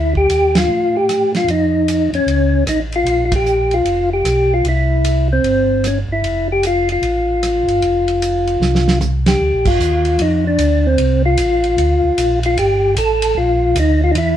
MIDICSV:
0, 0, Header, 1, 4, 480
1, 0, Start_track
1, 0, Key_signature, -1, "major"
1, 0, Tempo, 395778
1, 1802, Time_signature, 4, 2, 24, 8
1, 11406, Key_signature, -2, "major"
1, 17426, End_track
2, 0, Start_track
2, 0, Title_t, "Tonewheel organ"
2, 0, Program_c, 0, 16
2, 0, Note_on_c, 0, 64, 81
2, 160, Note_off_c, 0, 64, 0
2, 209, Note_on_c, 0, 67, 104
2, 694, Note_off_c, 0, 67, 0
2, 699, Note_on_c, 0, 65, 85
2, 1168, Note_on_c, 0, 67, 89
2, 1179, Note_off_c, 0, 65, 0
2, 1606, Note_off_c, 0, 67, 0
2, 1656, Note_on_c, 0, 65, 79
2, 1820, Note_off_c, 0, 65, 0
2, 1824, Note_on_c, 0, 63, 82
2, 2552, Note_off_c, 0, 63, 0
2, 2604, Note_on_c, 0, 61, 89
2, 3204, Note_off_c, 0, 61, 0
2, 3260, Note_on_c, 0, 63, 72
2, 3395, Note_off_c, 0, 63, 0
2, 3586, Note_on_c, 0, 65, 92
2, 3932, Note_off_c, 0, 65, 0
2, 3947, Note_on_c, 0, 65, 60
2, 4043, Note_off_c, 0, 65, 0
2, 4070, Note_on_c, 0, 67, 83
2, 4534, Note_on_c, 0, 65, 78
2, 4544, Note_off_c, 0, 67, 0
2, 4970, Note_off_c, 0, 65, 0
2, 5013, Note_on_c, 0, 67, 86
2, 5496, Note_off_c, 0, 67, 0
2, 5503, Note_on_c, 0, 65, 81
2, 5664, Note_off_c, 0, 65, 0
2, 5683, Note_on_c, 0, 64, 77
2, 6402, Note_off_c, 0, 64, 0
2, 6459, Note_on_c, 0, 60, 86
2, 7117, Note_off_c, 0, 60, 0
2, 7127, Note_on_c, 0, 61, 73
2, 7256, Note_off_c, 0, 61, 0
2, 7426, Note_on_c, 0, 64, 84
2, 7857, Note_off_c, 0, 64, 0
2, 7910, Note_on_c, 0, 67, 75
2, 8068, Note_off_c, 0, 67, 0
2, 8087, Note_on_c, 0, 65, 83
2, 8354, Note_off_c, 0, 65, 0
2, 8395, Note_on_c, 0, 65, 73
2, 10899, Note_off_c, 0, 65, 0
2, 11249, Note_on_c, 0, 67, 75
2, 11731, Note_on_c, 0, 65, 82
2, 11736, Note_off_c, 0, 67, 0
2, 12391, Note_on_c, 0, 63, 73
2, 12394, Note_off_c, 0, 65, 0
2, 12665, Note_off_c, 0, 63, 0
2, 12702, Note_on_c, 0, 62, 81
2, 13178, Note_on_c, 0, 60, 80
2, 13181, Note_off_c, 0, 62, 0
2, 13613, Note_off_c, 0, 60, 0
2, 13651, Note_on_c, 0, 65, 82
2, 15033, Note_off_c, 0, 65, 0
2, 15108, Note_on_c, 0, 65, 82
2, 15252, Note_off_c, 0, 65, 0
2, 15266, Note_on_c, 0, 67, 85
2, 15702, Note_off_c, 0, 67, 0
2, 15745, Note_on_c, 0, 69, 89
2, 16220, Note_on_c, 0, 65, 80
2, 16228, Note_off_c, 0, 69, 0
2, 16706, Note_off_c, 0, 65, 0
2, 16727, Note_on_c, 0, 63, 84
2, 16993, Note_off_c, 0, 63, 0
2, 17023, Note_on_c, 0, 65, 84
2, 17116, Note_on_c, 0, 63, 64
2, 17121, Note_off_c, 0, 65, 0
2, 17171, Note_off_c, 0, 63, 0
2, 17193, Note_on_c, 0, 64, 89
2, 17426, Note_off_c, 0, 64, 0
2, 17426, End_track
3, 0, Start_track
3, 0, Title_t, "Tonewheel organ"
3, 0, Program_c, 1, 16
3, 0, Note_on_c, 1, 38, 71
3, 326, Note_off_c, 1, 38, 0
3, 358, Note_on_c, 1, 39, 69
3, 807, Note_off_c, 1, 39, 0
3, 827, Note_on_c, 1, 45, 86
3, 1747, Note_off_c, 1, 45, 0
3, 1789, Note_on_c, 1, 41, 69
3, 2535, Note_off_c, 1, 41, 0
3, 2580, Note_on_c, 1, 41, 35
3, 2669, Note_off_c, 1, 41, 0
3, 2744, Note_on_c, 1, 37, 79
3, 3199, Note_off_c, 1, 37, 0
3, 3229, Note_on_c, 1, 33, 62
3, 3682, Note_off_c, 1, 33, 0
3, 3701, Note_on_c, 1, 34, 74
3, 4624, Note_off_c, 1, 34, 0
3, 4667, Note_on_c, 1, 29, 79
3, 5121, Note_off_c, 1, 29, 0
3, 5145, Note_on_c, 1, 35, 68
3, 5600, Note_off_c, 1, 35, 0
3, 5622, Note_on_c, 1, 36, 75
3, 6545, Note_off_c, 1, 36, 0
3, 6594, Note_on_c, 1, 31, 82
3, 7338, Note_off_c, 1, 31, 0
3, 7380, Note_on_c, 1, 31, 61
3, 7546, Note_off_c, 1, 31, 0
3, 7549, Note_on_c, 1, 29, 76
3, 8469, Note_off_c, 1, 29, 0
3, 8511, Note_on_c, 1, 33, 82
3, 9257, Note_off_c, 1, 33, 0
3, 9300, Note_on_c, 1, 31, 61
3, 9467, Note_off_c, 1, 31, 0
3, 9474, Note_on_c, 1, 29, 78
3, 10392, Note_off_c, 1, 29, 0
3, 10430, Note_on_c, 1, 36, 77
3, 11350, Note_off_c, 1, 36, 0
3, 11402, Note_on_c, 1, 38, 73
3, 11558, Note_on_c, 1, 34, 54
3, 11559, Note_off_c, 1, 38, 0
3, 11719, Note_on_c, 1, 31, 62
3, 11722, Note_off_c, 1, 34, 0
3, 11871, Note_off_c, 1, 31, 0
3, 11877, Note_on_c, 1, 39, 84
3, 12347, Note_off_c, 1, 39, 0
3, 12369, Note_on_c, 1, 41, 87
3, 12833, Note_off_c, 1, 41, 0
3, 12837, Note_on_c, 1, 38, 86
3, 13307, Note_off_c, 1, 38, 0
3, 13322, Note_on_c, 1, 36, 78
3, 13789, Note_off_c, 1, 36, 0
3, 13804, Note_on_c, 1, 33, 86
3, 14270, Note_off_c, 1, 33, 0
3, 14289, Note_on_c, 1, 38, 92
3, 14573, Note_off_c, 1, 38, 0
3, 14599, Note_on_c, 1, 38, 38
3, 14683, Note_off_c, 1, 38, 0
3, 14771, Note_on_c, 1, 34, 86
3, 15234, Note_off_c, 1, 34, 0
3, 15252, Note_on_c, 1, 31, 79
3, 15714, Note_off_c, 1, 31, 0
3, 15723, Note_on_c, 1, 33, 90
3, 16189, Note_off_c, 1, 33, 0
3, 16197, Note_on_c, 1, 34, 87
3, 16666, Note_off_c, 1, 34, 0
3, 16677, Note_on_c, 1, 38, 94
3, 17146, Note_off_c, 1, 38, 0
3, 17159, Note_on_c, 1, 40, 81
3, 17426, Note_off_c, 1, 40, 0
3, 17426, End_track
4, 0, Start_track
4, 0, Title_t, "Drums"
4, 184, Note_on_c, 9, 36, 42
4, 306, Note_off_c, 9, 36, 0
4, 359, Note_on_c, 9, 44, 51
4, 359, Note_on_c, 9, 51, 52
4, 480, Note_off_c, 9, 44, 0
4, 480, Note_off_c, 9, 51, 0
4, 669, Note_on_c, 9, 51, 60
4, 670, Note_on_c, 9, 38, 68
4, 790, Note_off_c, 9, 51, 0
4, 792, Note_off_c, 9, 38, 0
4, 1322, Note_on_c, 9, 44, 48
4, 1322, Note_on_c, 9, 51, 52
4, 1324, Note_on_c, 9, 37, 53
4, 1444, Note_off_c, 9, 44, 0
4, 1444, Note_off_c, 9, 51, 0
4, 1445, Note_off_c, 9, 37, 0
4, 1632, Note_on_c, 9, 51, 38
4, 1633, Note_on_c, 9, 38, 35
4, 1753, Note_off_c, 9, 51, 0
4, 1754, Note_off_c, 9, 38, 0
4, 1799, Note_on_c, 9, 51, 52
4, 1920, Note_off_c, 9, 51, 0
4, 2282, Note_on_c, 9, 44, 51
4, 2282, Note_on_c, 9, 51, 55
4, 2403, Note_off_c, 9, 44, 0
4, 2403, Note_off_c, 9, 51, 0
4, 2590, Note_on_c, 9, 51, 39
4, 2711, Note_off_c, 9, 51, 0
4, 2764, Note_on_c, 9, 51, 53
4, 2885, Note_off_c, 9, 51, 0
4, 3237, Note_on_c, 9, 44, 50
4, 3237, Note_on_c, 9, 51, 55
4, 3238, Note_on_c, 9, 37, 55
4, 3358, Note_off_c, 9, 44, 0
4, 3358, Note_off_c, 9, 51, 0
4, 3359, Note_off_c, 9, 37, 0
4, 3546, Note_on_c, 9, 51, 39
4, 3667, Note_off_c, 9, 51, 0
4, 3717, Note_on_c, 9, 51, 53
4, 3838, Note_off_c, 9, 51, 0
4, 4024, Note_on_c, 9, 36, 73
4, 4024, Note_on_c, 9, 51, 65
4, 4145, Note_off_c, 9, 51, 0
4, 4146, Note_off_c, 9, 36, 0
4, 4195, Note_on_c, 9, 44, 45
4, 4317, Note_off_c, 9, 44, 0
4, 4500, Note_on_c, 9, 51, 39
4, 4621, Note_off_c, 9, 51, 0
4, 4676, Note_on_c, 9, 51, 52
4, 4797, Note_off_c, 9, 51, 0
4, 5156, Note_on_c, 9, 44, 52
4, 5156, Note_on_c, 9, 51, 55
4, 5157, Note_on_c, 9, 37, 57
4, 5277, Note_off_c, 9, 44, 0
4, 5277, Note_off_c, 9, 51, 0
4, 5278, Note_off_c, 9, 37, 0
4, 5636, Note_on_c, 9, 51, 48
4, 5757, Note_off_c, 9, 51, 0
4, 6119, Note_on_c, 9, 44, 48
4, 6119, Note_on_c, 9, 51, 60
4, 6240, Note_off_c, 9, 44, 0
4, 6240, Note_off_c, 9, 51, 0
4, 6600, Note_on_c, 9, 51, 48
4, 6721, Note_off_c, 9, 51, 0
4, 7082, Note_on_c, 9, 44, 50
4, 7082, Note_on_c, 9, 51, 51
4, 7083, Note_on_c, 9, 37, 52
4, 7203, Note_off_c, 9, 44, 0
4, 7203, Note_off_c, 9, 51, 0
4, 7204, Note_off_c, 9, 37, 0
4, 7567, Note_on_c, 9, 51, 55
4, 7688, Note_off_c, 9, 51, 0
4, 8044, Note_on_c, 9, 44, 49
4, 8044, Note_on_c, 9, 51, 61
4, 8165, Note_off_c, 9, 44, 0
4, 8165, Note_off_c, 9, 51, 0
4, 8353, Note_on_c, 9, 51, 39
4, 8474, Note_off_c, 9, 51, 0
4, 8522, Note_on_c, 9, 51, 53
4, 8643, Note_off_c, 9, 51, 0
4, 9009, Note_on_c, 9, 44, 48
4, 9009, Note_on_c, 9, 51, 58
4, 9010, Note_on_c, 9, 37, 54
4, 9130, Note_off_c, 9, 44, 0
4, 9130, Note_off_c, 9, 51, 0
4, 9132, Note_off_c, 9, 37, 0
4, 9320, Note_on_c, 9, 51, 39
4, 9441, Note_off_c, 9, 51, 0
4, 9487, Note_on_c, 9, 51, 52
4, 9609, Note_off_c, 9, 51, 0
4, 9797, Note_on_c, 9, 51, 42
4, 9918, Note_off_c, 9, 51, 0
4, 9971, Note_on_c, 9, 44, 52
4, 9971, Note_on_c, 9, 51, 64
4, 10092, Note_off_c, 9, 44, 0
4, 10092, Note_off_c, 9, 51, 0
4, 10278, Note_on_c, 9, 51, 40
4, 10399, Note_off_c, 9, 51, 0
4, 10450, Note_on_c, 9, 38, 41
4, 10572, Note_off_c, 9, 38, 0
4, 10614, Note_on_c, 9, 38, 42
4, 10735, Note_off_c, 9, 38, 0
4, 10767, Note_on_c, 9, 38, 58
4, 10888, Note_off_c, 9, 38, 0
4, 10925, Note_on_c, 9, 44, 51
4, 10926, Note_on_c, 9, 47, 53
4, 11046, Note_off_c, 9, 44, 0
4, 11047, Note_off_c, 9, 47, 0
4, 11233, Note_on_c, 9, 51, 61
4, 11235, Note_on_c, 9, 38, 68
4, 11355, Note_off_c, 9, 51, 0
4, 11356, Note_off_c, 9, 38, 0
4, 11709, Note_on_c, 9, 49, 75
4, 11710, Note_on_c, 9, 36, 86
4, 11830, Note_off_c, 9, 49, 0
4, 11831, Note_off_c, 9, 36, 0
4, 11883, Note_on_c, 9, 44, 54
4, 12004, Note_off_c, 9, 44, 0
4, 12187, Note_on_c, 9, 51, 44
4, 12308, Note_off_c, 9, 51, 0
4, 12355, Note_on_c, 9, 51, 59
4, 12476, Note_off_c, 9, 51, 0
4, 12838, Note_on_c, 9, 44, 54
4, 12838, Note_on_c, 9, 51, 65
4, 12959, Note_off_c, 9, 44, 0
4, 12959, Note_off_c, 9, 51, 0
4, 13317, Note_on_c, 9, 51, 59
4, 13439, Note_off_c, 9, 51, 0
4, 13795, Note_on_c, 9, 44, 56
4, 13795, Note_on_c, 9, 51, 72
4, 13917, Note_off_c, 9, 44, 0
4, 13917, Note_off_c, 9, 51, 0
4, 14113, Note_on_c, 9, 51, 43
4, 14234, Note_off_c, 9, 51, 0
4, 14287, Note_on_c, 9, 51, 59
4, 14409, Note_off_c, 9, 51, 0
4, 14769, Note_on_c, 9, 44, 52
4, 14769, Note_on_c, 9, 51, 70
4, 14890, Note_off_c, 9, 44, 0
4, 14890, Note_off_c, 9, 51, 0
4, 15078, Note_on_c, 9, 51, 46
4, 15199, Note_off_c, 9, 51, 0
4, 15251, Note_on_c, 9, 51, 63
4, 15372, Note_off_c, 9, 51, 0
4, 15724, Note_on_c, 9, 44, 58
4, 15724, Note_on_c, 9, 51, 67
4, 15846, Note_off_c, 9, 44, 0
4, 15846, Note_off_c, 9, 51, 0
4, 16035, Note_on_c, 9, 51, 69
4, 16156, Note_off_c, 9, 51, 0
4, 16683, Note_on_c, 9, 44, 55
4, 16683, Note_on_c, 9, 51, 65
4, 16805, Note_off_c, 9, 44, 0
4, 16805, Note_off_c, 9, 51, 0
4, 17163, Note_on_c, 9, 51, 65
4, 17284, Note_off_c, 9, 51, 0
4, 17426, End_track
0, 0, End_of_file